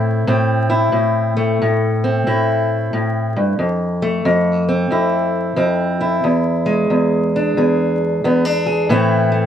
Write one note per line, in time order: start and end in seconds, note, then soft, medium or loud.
0.00 0.26 A2 medium
0.00 1.36 A3 medium
0.00 0.27 C4 medium
0.00 0.69 E4 medium
0.27 0.91 A2 medium
0.27 2.04 C4 medium
0.70 2.27 E4 medium
0.92 1.59 A2 medium
1.37 3.56 A3 medium
1.62 2.25 A2 medium
2.04 3.57 C4 medium
2.27 2.92 A2 medium
2.27 4.91 E4 medium
2.93 3.35 A2 medium
3.36 3.58 G2 medium
3.59 4.24 F2 medium
4.02 6.22 A3 medium
4.25 4.89 F2 medium
4.68 5.56 C4 medium
4.91 5.55 F2 medium
4.91 6.00 E4 medium
5.56 6.21 F2 medium
5.56 6.21 C4 medium
6.00 7.57 E4 medium
6.24 6.89 E2 medium
6.66 8.87 G#3 medium
6.90 7.56 E2 medium
7.36 8.24 D4 medium
7.57 8.23 E2 medium
7.57 8.65 G#4 medium
8.24 8.90 E2 medium
8.24 8.45 B3 medium
8.45 8.90 D4 soft
8.66 8.87 G#4 medium
8.89 9.46 A2 medium
8.89 9.46 E3 medium
8.89 9.31 A3 medium
8.89 9.46 C4 medium
8.89 9.46 E4 medium
9.32 9.46 A3 medium